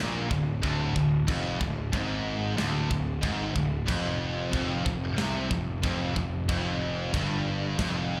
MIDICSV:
0, 0, Header, 1, 4, 480
1, 0, Start_track
1, 0, Key_signature, -1, "minor"
1, 0, Tempo, 649351
1, 954, Time_signature, 4, 2, 24, 8
1, 6061, End_track
2, 0, Start_track
2, 0, Title_t, "Distorted electric guitar"
2, 0, Program_c, 0, 30
2, 0, Note_on_c, 0, 46, 109
2, 224, Note_off_c, 0, 46, 0
2, 227, Note_on_c, 0, 38, 69
2, 423, Note_off_c, 0, 38, 0
2, 465, Note_on_c, 0, 38, 116
2, 692, Note_off_c, 0, 38, 0
2, 701, Note_on_c, 0, 38, 75
2, 899, Note_off_c, 0, 38, 0
2, 942, Note_on_c, 0, 41, 106
2, 1180, Note_off_c, 0, 41, 0
2, 1186, Note_on_c, 0, 38, 81
2, 1381, Note_off_c, 0, 38, 0
2, 1424, Note_on_c, 0, 44, 110
2, 1896, Note_off_c, 0, 44, 0
2, 1899, Note_on_c, 0, 38, 112
2, 2133, Note_off_c, 0, 38, 0
2, 2142, Note_on_c, 0, 38, 73
2, 2338, Note_off_c, 0, 38, 0
2, 2377, Note_on_c, 0, 44, 124
2, 2610, Note_off_c, 0, 44, 0
2, 2612, Note_on_c, 0, 38, 79
2, 2813, Note_off_c, 0, 38, 0
2, 2854, Note_on_c, 0, 41, 98
2, 3322, Note_off_c, 0, 41, 0
2, 3331, Note_on_c, 0, 41, 104
2, 3573, Note_off_c, 0, 41, 0
2, 3584, Note_on_c, 0, 41, 73
2, 3779, Note_off_c, 0, 41, 0
2, 3817, Note_on_c, 0, 48, 113
2, 4056, Note_off_c, 0, 48, 0
2, 4069, Note_on_c, 0, 41, 71
2, 4262, Note_off_c, 0, 41, 0
2, 4307, Note_on_c, 0, 41, 113
2, 4537, Note_off_c, 0, 41, 0
2, 4546, Note_on_c, 0, 41, 75
2, 4740, Note_off_c, 0, 41, 0
2, 4794, Note_on_c, 0, 41, 98
2, 5266, Note_off_c, 0, 41, 0
2, 5270, Note_on_c, 0, 43, 106
2, 5745, Note_off_c, 0, 43, 0
2, 5752, Note_on_c, 0, 41, 102
2, 6061, Note_off_c, 0, 41, 0
2, 6061, End_track
3, 0, Start_track
3, 0, Title_t, "Picked electric bass"
3, 0, Program_c, 1, 34
3, 0, Note_on_c, 1, 34, 88
3, 213, Note_off_c, 1, 34, 0
3, 228, Note_on_c, 1, 26, 81
3, 454, Note_off_c, 1, 26, 0
3, 469, Note_on_c, 1, 26, 83
3, 695, Note_off_c, 1, 26, 0
3, 711, Note_on_c, 1, 26, 92
3, 935, Note_off_c, 1, 26, 0
3, 949, Note_on_c, 1, 29, 96
3, 1174, Note_off_c, 1, 29, 0
3, 1189, Note_on_c, 1, 26, 92
3, 1414, Note_off_c, 1, 26, 0
3, 1428, Note_on_c, 1, 32, 106
3, 1880, Note_off_c, 1, 32, 0
3, 1900, Note_on_c, 1, 26, 92
3, 2128, Note_off_c, 1, 26, 0
3, 2147, Note_on_c, 1, 26, 76
3, 2372, Note_off_c, 1, 26, 0
3, 2388, Note_on_c, 1, 32, 102
3, 2612, Note_off_c, 1, 32, 0
3, 2631, Note_on_c, 1, 26, 95
3, 2854, Note_off_c, 1, 26, 0
3, 2872, Note_on_c, 1, 29, 95
3, 3322, Note_off_c, 1, 29, 0
3, 3352, Note_on_c, 1, 29, 100
3, 3574, Note_off_c, 1, 29, 0
3, 3593, Note_on_c, 1, 29, 80
3, 3815, Note_off_c, 1, 29, 0
3, 3825, Note_on_c, 1, 36, 100
3, 4051, Note_off_c, 1, 36, 0
3, 4072, Note_on_c, 1, 29, 77
3, 4294, Note_off_c, 1, 29, 0
3, 4316, Note_on_c, 1, 29, 96
3, 4537, Note_off_c, 1, 29, 0
3, 4558, Note_on_c, 1, 29, 92
3, 4778, Note_off_c, 1, 29, 0
3, 4794, Note_on_c, 1, 29, 93
3, 5244, Note_off_c, 1, 29, 0
3, 5277, Note_on_c, 1, 31, 103
3, 5726, Note_off_c, 1, 31, 0
3, 5758, Note_on_c, 1, 29, 91
3, 6061, Note_off_c, 1, 29, 0
3, 6061, End_track
4, 0, Start_track
4, 0, Title_t, "Drums"
4, 228, Note_on_c, 9, 36, 102
4, 302, Note_off_c, 9, 36, 0
4, 467, Note_on_c, 9, 52, 57
4, 468, Note_on_c, 9, 36, 111
4, 541, Note_off_c, 9, 52, 0
4, 542, Note_off_c, 9, 36, 0
4, 709, Note_on_c, 9, 36, 94
4, 783, Note_off_c, 9, 36, 0
4, 948, Note_on_c, 9, 36, 124
4, 948, Note_on_c, 9, 52, 81
4, 1022, Note_off_c, 9, 36, 0
4, 1022, Note_off_c, 9, 52, 0
4, 1189, Note_on_c, 9, 36, 97
4, 1263, Note_off_c, 9, 36, 0
4, 1428, Note_on_c, 9, 36, 97
4, 1435, Note_on_c, 9, 52, 63
4, 1502, Note_off_c, 9, 36, 0
4, 1509, Note_off_c, 9, 52, 0
4, 1910, Note_on_c, 9, 38, 115
4, 1910, Note_on_c, 9, 52, 65
4, 1984, Note_off_c, 9, 38, 0
4, 1984, Note_off_c, 9, 52, 0
4, 2150, Note_on_c, 9, 36, 96
4, 2224, Note_off_c, 9, 36, 0
4, 2388, Note_on_c, 9, 36, 112
4, 2389, Note_on_c, 9, 52, 71
4, 2462, Note_off_c, 9, 36, 0
4, 2463, Note_off_c, 9, 52, 0
4, 2629, Note_on_c, 9, 36, 87
4, 2703, Note_off_c, 9, 36, 0
4, 2871, Note_on_c, 9, 36, 127
4, 2874, Note_on_c, 9, 52, 81
4, 2945, Note_off_c, 9, 36, 0
4, 2948, Note_off_c, 9, 52, 0
4, 3351, Note_on_c, 9, 36, 102
4, 3351, Note_on_c, 9, 52, 69
4, 3424, Note_off_c, 9, 36, 0
4, 3425, Note_off_c, 9, 52, 0
4, 3592, Note_on_c, 9, 36, 103
4, 3666, Note_off_c, 9, 36, 0
4, 3830, Note_on_c, 9, 38, 122
4, 3830, Note_on_c, 9, 52, 64
4, 3904, Note_off_c, 9, 38, 0
4, 3904, Note_off_c, 9, 52, 0
4, 4072, Note_on_c, 9, 36, 99
4, 4146, Note_off_c, 9, 36, 0
4, 4313, Note_on_c, 9, 36, 117
4, 4315, Note_on_c, 9, 52, 57
4, 4387, Note_off_c, 9, 36, 0
4, 4389, Note_off_c, 9, 52, 0
4, 4555, Note_on_c, 9, 36, 95
4, 4629, Note_off_c, 9, 36, 0
4, 4797, Note_on_c, 9, 36, 127
4, 4801, Note_on_c, 9, 52, 69
4, 4871, Note_off_c, 9, 36, 0
4, 4875, Note_off_c, 9, 52, 0
4, 5277, Note_on_c, 9, 36, 102
4, 5282, Note_on_c, 9, 52, 70
4, 5351, Note_off_c, 9, 36, 0
4, 5356, Note_off_c, 9, 52, 0
4, 5757, Note_on_c, 9, 36, 104
4, 5759, Note_on_c, 9, 38, 115
4, 5759, Note_on_c, 9, 52, 64
4, 5831, Note_off_c, 9, 36, 0
4, 5833, Note_off_c, 9, 38, 0
4, 5833, Note_off_c, 9, 52, 0
4, 6061, End_track
0, 0, End_of_file